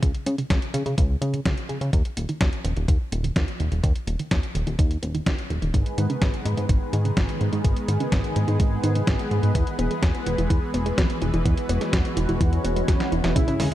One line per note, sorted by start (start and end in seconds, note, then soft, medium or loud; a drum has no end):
0.03 0.12 C#2 medium
0.03 0.13 C#3 medium
0.03 kick loud
0.03 closed hi-hat medium
0.15 closed hi-hat soft
0.26 0.36 C#3 medium
0.26 0.34 G#3 medium
0.26 closed hi-hat medium
0.38 0.46 C#3 loud
0.38 closed hi-hat soft
0.50 0.60 C#2 medium
0.50 0.57 D#3 medium
0.50 kick loud
0.50 snare loud
0.50 closed hi-hat medium
0.62 closed hi-hat soft
0.74 0.83 C#3 loud
0.74 0.81 C#3 medium
0.74 closed hi-hat medium
0.86 0.95 C#3 loud
0.86 0.97 C#3 medium
0.86 closed hi-hat soft
0.98 1.17 C#2 loud
0.98 1.09 C#3 medium
0.98 kick loud
0.98 closed hi-hat medium
1.22 1.40 C#3 loud
1.22 1.29 G#3 medium
1.22 closed hi-hat medium
1.34 1.41 C#3 medium
1.34 closed hi-hat soft
1.45 1.55 C#2 loud
1.45 1.53 D#3 medium
1.45 kick loud
1.45 snare loud
1.45 closed hi-hat medium
1.57 closed hi-hat soft
1.69 1.79 C#3 medium
1.69 1.76 C#3 medium
1.69 closed hi-hat soft
1.81 1.91 C#3 medium
1.81 1.92 C#3 medium
1.81 closed hi-hat soft
1.93 2.02 D#2 loud
1.93 2.04 D#3 medium
1.93 kick loud
1.93 closed hi-hat medium
2.05 closed hi-hat soft
2.17 2.26 D#1 medium
2.17 2.24 A#3 medium
2.17 closed hi-hat medium
2.29 2.36 D#3 loud
2.29 closed hi-hat soft
2.41 2.50 D#2 medium
2.41 2.48 F3 medium
2.41 kick loud
2.41 snare loud
2.41 closed hi-hat medium
2.53 closed hi-hat soft
2.65 2.74 D#1 loud
2.65 2.72 D#3 medium
2.65 closed hi-hat medium
2.76 2.86 D#1 loud
2.76 2.87 D#3 medium
2.76 closed hi-hat soft
2.88 2.98 D#2 medium
2.88 2.99 D#3 medium
2.88 kick loud
2.88 closed hi-hat medium
3.12 3.31 D#1 loud
3.12 3.19 A#3 medium
3.12 closed hi-hat medium
3.24 3.31 D#3 medium
3.24 closed hi-hat soft
3.36 3.45 D#2 medium
3.36 3.43 F3 medium
3.36 kick loud
3.36 snare loud
3.36 closed hi-hat medium
3.48 closed hi-hat soft
3.60 3.69 D#1 medium
3.60 3.67 D#3 medium
3.60 closed hi-hat soft
3.72 3.81 D#1 medium
3.72 3.82 D#3 medium
3.72 closed hi-hat soft
3.83 3.93 D#2 loud
3.83 3.94 D#3 medium
3.83 kick loud
3.83 closed hi-hat medium
3.96 closed hi-hat soft
4.07 4.17 D#1 medium
4.07 4.15 A#3 medium
4.07 closed hi-hat medium
4.19 4.26 D#3 loud
4.19 closed hi-hat soft
4.31 4.41 D#2 medium
4.31 4.38 F3 medium
4.31 kick loud
4.31 snare loud
4.31 closed hi-hat medium
4.43 closed hi-hat soft
4.55 4.64 D#1 medium
4.55 4.62 D#3 medium
4.55 closed hi-hat medium
4.67 4.76 D#1 loud
4.67 4.78 D#3 medium
4.67 closed hi-hat soft
4.79 4.97 D#2 loud
4.79 4.90 D#3 medium
4.79 kick loud
4.79 closed hi-hat medium
4.91 closed hi-hat soft
5.02 5.21 D#1 medium
5.02 5.10 A#3 medium
5.02 closed hi-hat medium
5.14 5.22 D#3 loud
5.14 closed hi-hat soft
5.26 5.36 D#2 medium
5.26 5.34 F3 medium
5.26 kick loud
5.26 snare loud
5.26 closed hi-hat medium
5.38 closed hi-hat soft
5.50 5.60 D#1 loud
5.50 5.57 D#3 medium
5.50 closed hi-hat soft
5.62 5.71 D#1 medium
5.62 5.73 D#3 medium
5.62 closed hi-hat soft
5.74 5.83 G#1 loud
5.74 5.85 G#2 medium
5.74 9.51 D#3 medium
5.74 13.32 G#3 medium
5.74 13.32 B3 medium
5.74 11.41 G#4 medium
5.74 13.32 B4 medium
5.74 kick loud
5.74 closed hi-hat medium
5.86 closed hi-hat soft
5.98 6.07 G#2 medium
5.98 6.05 D#3 medium
5.98 closed hi-hat medium
6.10 6.17 C#3 medium
6.10 closed hi-hat soft
6.22 6.31 G#1 medium
6.22 6.29 G#2 medium
6.22 kick loud
6.22 snare loud
6.22 closed hi-hat medium
6.34 closed hi-hat soft
6.45 6.53 G#2 medium
6.45 6.55 G#2 loud
6.45 closed hi-hat medium
6.57 6.67 G#2 loud
6.57 6.68 G#2 medium
6.57 closed hi-hat soft
6.69 6.79 G#1 medium
6.69 6.80 G#2 medium
6.69 kick loud
6.69 closed hi-hat medium
6.93 7.12 G#2 loud
6.93 7.00 D#3 medium
6.93 closed hi-hat medium
7.05 7.12 C#3 medium
7.05 closed hi-hat soft
7.17 7.26 G#1 medium
7.17 7.24 G#2 medium
7.17 kick loud
7.17 snare loud
7.17 closed hi-hat medium
7.29 closed hi-hat soft
7.41 7.50 G#2 medium
7.41 7.48 G#2 medium
7.41 closed hi-hat soft
7.53 7.62 G#2 medium
7.53 7.63 G#2 medium
7.53 closed hi-hat soft
7.64 7.74 G#1 loud
7.64 7.75 G#2 medium
7.64 kick loud
7.64 closed hi-hat medium
7.77 closed hi-hat soft
7.88 7.98 G#2 medium
7.88 7.95 D#3 medium
7.88 closed hi-hat medium
8.00 8.07 C#3 medium
8.00 closed hi-hat soft
8.12 8.21 G#1 medium
8.12 8.19 G#2 medium
8.12 kick loud
8.12 snare loud
8.12 closed hi-hat medium
8.24 closed hi-hat soft
8.36 8.45 G#2 loud
8.36 8.43 G#2 medium
8.36 closed hi-hat medium
8.48 8.57 G#2 loud
8.48 8.59 G#2 medium
8.48 closed hi-hat soft
8.60 8.78 G#1 loud
8.60 8.71 G#2 medium
8.60 kick loud
8.60 closed hi-hat medium
8.84 9.02 G#2 medium
8.84 8.91 D#3 medium
8.84 closed hi-hat medium
8.95 9.03 C#3 medium
8.95 closed hi-hat soft
9.07 9.17 G#1 loud
9.07 9.15 G#2 medium
9.07 kick loud
9.07 snare loud
9.07 closed hi-hat medium
9.19 closed hi-hat soft
9.31 9.40 G#2 medium
9.31 9.38 G#2 medium
9.31 closed hi-hat soft
9.43 9.52 G#2 medium
9.43 9.54 G#2 medium
9.43 closed hi-hat soft
9.55 9.64 E2 loud
9.55 13.32 E3 medium
9.55 9.66 E3 medium
9.55 kick loud
9.55 closed hi-hat medium
9.67 closed hi-hat soft
9.79 9.88 E1 medium
9.79 9.86 B3 medium
9.79 closed hi-hat medium
9.91 9.98 G#3 medium
9.91 closed hi-hat soft
10.02 10.12 E2 medium
10.02 10.10 F#3 medium
10.02 kick loud
10.02 snare loud
10.02 closed hi-hat medium
10.15 closed hi-hat soft
10.26 10.36 E1 loud
10.26 10.34 E3 medium
10.26 closed hi-hat medium
10.38 10.48 E1 loud
10.38 10.49 E3 medium
10.38 closed hi-hat soft
10.50 10.60 E2 medium
10.50 10.61 E3 medium
10.50 kick loud
10.50 closed hi-hat medium
10.74 10.93 E1 loud
10.74 10.81 B3 medium
10.74 closed hi-hat medium
10.86 10.93 G#3 medium
10.86 closed hi-hat soft
10.98 11.07 E2 medium
10.98 11.05 F#3 medium
10.98 kick loud
10.98 snare loud
10.98 closed hi-hat medium
11.10 closed hi-hat soft
11.22 11.31 E1 medium
11.22 11.29 E3 medium
11.22 closed hi-hat soft
11.34 11.43 E1 loud
11.34 11.44 E3 medium
11.34 closed hi-hat soft
11.45 11.55 E2 loud
11.45 11.56 E3 medium
11.45 13.34 F#4 medium
11.45 kick loud
11.45 closed hi-hat medium
11.57 closed hi-hat soft
11.69 11.79 E1 medium
11.69 11.76 B3 medium
11.69 closed hi-hat medium
11.81 11.88 G#3 medium
11.81 snare soft
11.81 closed hi-hat soft
11.93 12.02 E2 medium
11.93 12.00 F#3 medium
11.93 kick loud
11.93 snare loud
11.93 closed hi-hat medium
12.05 closed hi-hat soft
12.17 12.26 E1 loud
12.17 12.24 E3 medium
12.17 closed hi-hat medium
12.29 12.38 E1 loud
12.29 12.40 E3 medium
12.29 closed hi-hat soft
12.41 12.59 E2 loud
12.41 12.51 E3 medium
12.41 kick loud
12.41 closed hi-hat medium
12.41 swell medium
12.53 closed hi-hat soft
12.64 12.83 E1 medium
12.64 12.72 B3 medium
12.64 closed hi-hat medium
12.76 12.84 G#3 medium
12.76 closed hi-hat soft
12.88 12.98 E2 medium
12.88 12.95 F#3 medium
12.88 kick loud
12.88 snare medium
12.88 closed hi-hat medium
13.00 snare medium
13.00 closed hi-hat soft
13.12 13.22 E1 medium
13.12 13.19 E3 medium
13.12 closed hi-hat soft
13.24 13.33 E1 medium
13.24 13.35 E3 medium
13.24 snare medium
13.24 closed hi-hat soft
13.36 13.45 C#2 loud
13.36 13.74 C#3 medium
13.36 13.40 C#3 medium
13.36 13.74 E3 medium
13.36 13.74 G#3 medium
13.36 13.74 C#4 medium
13.36 13.64 E4 loud
13.36 13.74 G#4 medium
13.36 kick loud
13.36 closed hi-hat loud
13.36 sub drop medium
13.48 13.55 C#3 medium
13.48 closed hi-hat soft
13.60 13.69 C#3 medium
13.60 13.71 G#3 medium
13.60 open hi-hat loud
13.60 high conga medium